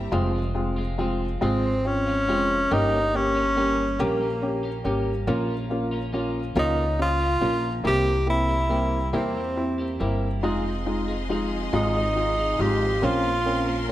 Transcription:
Already playing: clean electric guitar G3 A#3 E4 G4, string section C5 E5 A#5
0.12 upright bass F1, clean electric guitar F2 C3 F3 G#3 C4 F4, felt piano G#3 C4 F4
0.33 clean electric guitar F3 G#3 C4 F4
0.55 felt piano G#3 C4 F4
0.76 clean electric guitar F3 G#3 C4 F4
0.98 clean electric guitar F3 G#3 C4 F4, felt piano G#3 C4 F4
1.41 upright bass G#1, clean electric guitar F2 C3 F3 G#3 C4 F4, felt piano G#3 C4 F4, tenor saxophone C4
1.63 clean electric guitar F3 G#3 C4 F4
1.85 felt piano C4 F4, tenor saxophone C#4
2.06 clean electric guitar F3 G#3 C4 F4
2.28 upright bass F1, clean electric guitar F3 G#3 F4, felt piano G#3 C4 F4
2.71 upright bass G1, clean electric guitar G3 A#3 C#4 G4, felt piano A#3 C#4 G4, tenor saxophone D#4
2.92 clean electric guitar A#3 C#4 G4
3.14 felt piano A#3 C#4 G4, tenor saxophone C#4
3.35 clean electric guitar A#3 C#4 G4
3.56 clean electric guitar G3 A#3 C#4 G4, felt piano A#3 C#4 G4
3.99 upright bass A#1, clean electric guitar G3 A#3 C#4 G4, felt piano A#3 C#4 G4, tenor saxophone A#3
4.20 clean electric guitar A#3 C#4 G4
4.42 felt piano C#4 G4
4.63 clean electric guitar A#3 C#4 G4
4.84 upright bass G#1, clean electric guitar G3 A#3 C#4 G4, felt piano A#3 C#4 G4
5.27 upright bass A#1, clean electric guitar A#2 F3 A#3 C#4 F4, felt piano A#3 C#4 F4
5.49 clean electric guitar A#3 C#4 F4
5.70 felt piano A#3 C#4 F4
5.91 clean electric guitar A#3 C#4 F4
6.13 clean electric guitar F3 A#3 C#4 F4, felt piano A#3 C#4 F4
6.55 upright bass C#2, clean electric guitar A#2 F3 A#3 C#4 F4, felt piano A#3 C#4 F4, tenor saxophone D#4
6.77 clean electric guitar A#3 C#4 F4
6.99 felt piano C#4 F4, tenor saxophone F4
7.20 clean electric guitar A#3 C#4 F4
7.41 upright bass A#1, clean electric guitar F3 A#3 C#4 F4, felt piano A#3 C#4 F4
7.84 upright bass C2, clean electric guitar C3 G3 A#3 E4 G4, felt piano A#3 C4 E4, tenor saxophone G4
8.05 clean electric guitar A#3 E4 G4
8.27 felt piano A#3 C4 E4, tenor saxophone E4
8.48 clean electric guitar A#3 E4 G4
8.69 clean electric guitar G3 A#3 E4 G4, felt piano A#3 C4 E4
9.13 upright bass E2, clean electric guitar C3 G3 A#3 E4 G4, felt piano A#3 C4 E4, tenor saxophone C4
9.35 clean electric guitar A#3 E4 G4
9.56 felt piano C4 E4
9.78 clean electric guitar A#3 E4 G4
10.00 upright bass G1, clean electric guitar G3 A#3 E4 G4, felt piano A#3 C4 E4
10.43 upright bass F1, clean electric guitar F3 C4 D#4 G#4, felt piano G#3 D#4 F4, string section G#3 D#5 F5 C6
10.65 clean electric guitar C4 D#4 G#4
10.86 felt piano G#3 D#4 F4
11.08 clean electric guitar C4 D#4 G#4
11.29 clean electric guitar F3 C4 D#4 G#4, felt piano G#3 D#4 F4
11.73 upright bass G#1, clean electric guitar F3 C4 D#4 G#4, felt piano G#3 D#4 F4, tenor saxophone D#4
11.94 clean electric guitar C4 D#4 G#4
12.16 felt piano D#4 F4
12.37 clean electric guitar C4 D#4 G#4
12.59 upright bass G#1, clean electric guitar F3 C4 D#4, felt piano G#3 D#4 F4, tenor saxophone G4
13.02 upright bass A#1, clean electric guitar A#2 F3 A#3 C#4 F4 C5, felt piano A#3 C4 C#4, string section C#4 A#4, tenor saxophone F4
13.24 clean electric guitar A#3 C#4 F4 C5
13.45 felt piano A#3 C4 C#4
13.67 clean electric guitar A#3 C#4 F4 C5
13.88 clean electric guitar A#3, felt piano A#3

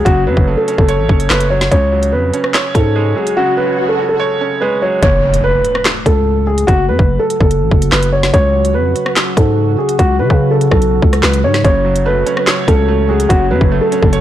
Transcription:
Already playing: felt piano C#3 F#3 A3 C#4 C#5
0.05 808-style bass F#1, felt piano C#3, grand piano F#4, kick, closed hi-hat
0.27 808-style bass F#2, felt piano F#3, grand piano B4
0.37 808-style bass F#1, kick
0.48 felt piano A3
0.57 grand piano A4
0.68 felt piano C#4, closed hi-hat
0.78 808-style bass F#1, grand piano A4, kick
0.88 felt piano C#5, closed hi-hat
0.99 808-style bass A1
1.09 808-style bass F#1, felt piano C#4, kick
1.20 closed hi-hat
1.29 808-style bass F#1, felt piano A3, grand piano B4, snare, clap
1.40 closed hi-hat
1.50 felt piano F#3, grand piano C#5
1.61 snare, closed hi-hat
1.71 808-style bass C#2, felt piano C#3, grand piano C#5, kick, closed hi-hat, swell
1.92 felt piano F#3
2.03 closed hi-hat
2.12 808-style bass F2, grand piano B4
2.34 felt piano C#4, closed hi-hat
2.44 cross-stick
2.54 felt piano C#5, snare, clap, closed hi-hat
2.75 808-style bass G#2, felt piano C#4, grand piano A4, kick, closed hi-hat
2.96 felt piano G#3
3.16 felt piano F#3, grand piano G#4
3.27 closed hi-hat
3.37 felt piano C#3, grand piano F#4
3.57 felt piano F#3, grand piano B4
3.89 grand piano A4
3.99 felt piano C#4
4.09 grand piano A4
4.20 felt piano C#5
4.41 felt piano C#4
4.61 felt piano G#3, grand piano B4
4.82 felt piano F#3, grand piano C#5
5.03 808-style bass F#1, ambient pad C#3 F#3 A3 F#4, grand piano C#5, kick, closed hi-hat, impact
5.34 closed hi-hat
5.44 grand piano B4
5.65 closed hi-hat
5.75 cross-stick
5.85 snare, clap, closed hi-hat
6.06 808-style bass C#2, grand piano A4, kick, closed hi-hat
6.47 grand piano G#4
6.58 closed hi-hat
6.67 808-style bass F#1, grand piano F#4, kick, closed hi-hat
6.89 808-style bass F#2, grand piano B4
6.99 808-style bass F#1, kick
7.19 grand piano A4
7.30 closed hi-hat
7.40 808-style bass F#1, grand piano A4, kick
7.51 closed hi-hat
7.61 808-style bass A1
7.71 808-style bass F#1, kick
7.82 closed hi-hat
7.91 808-style bass F#1, grand piano B4, snare, clap
8.03 closed hi-hat
8.13 grand piano C#5
8.23 snare, closed hi-hat
8.34 808-style bass C#2, grand piano C#5, kick, closed hi-hat
8.65 closed hi-hat
8.74 808-style bass F2, grand piano B4
8.96 closed hi-hat
9.06 cross-stick
9.16 snare, clap, closed hi-hat
9.37 808-style bass G#2, grand piano A4, kick, closed hi-hat
9.78 grand piano G#4
9.89 closed hi-hat
9.99 808-style bass C#2, grand piano F#4, kick, closed hi-hat
10.19 808-style bass C#3, grand piano B4
10.30 808-style bass C#3, kick
10.51 grand piano A4
10.61 closed hi-hat
10.71 808-style bass B1, grand piano A4, kick, cross-stick
10.82 closed hi-hat
11.02 808-style bass C#2, kick
11.13 cross-stick, closed hi-hat
11.23 808-style bass C#2, grand piano B4, snare, clap
11.33 closed hi-hat
11.44 808-style bass G#2, grand piano C#5
11.54 snare, closed hi-hat
11.64 808-style bass F#1, felt piano C#3, ambient pad A3 F#4, grand piano C#5, kick, closed hi-hat
11.85 felt piano F#3
11.96 closed hi-hat
12.06 felt piano A3, grand piano B4
12.26 felt piano C#4, closed hi-hat
12.37 cross-stick
12.47 felt piano C#5, snare, clap, closed hi-hat
12.68 808-style bass C#2, felt piano C#4, grand piano A4, kick, closed hi-hat
12.88 felt piano A3
13.09 felt piano F#3, grand piano G#4
13.20 closed hi-hat
13.29 808-style bass F#1, felt piano C#3, grand piano F#4, kick, closed hi-hat
13.51 808-style bass F#2, felt piano F#3, grand piano B4
13.61 808-style bass F#1, kick
13.72 felt piano A3
13.81 grand piano A4
13.92 felt piano C#4, closed hi-hat
14.02 808-style bass F#1, grand piano A4, kick
14.13 felt piano C#5, closed hi-hat

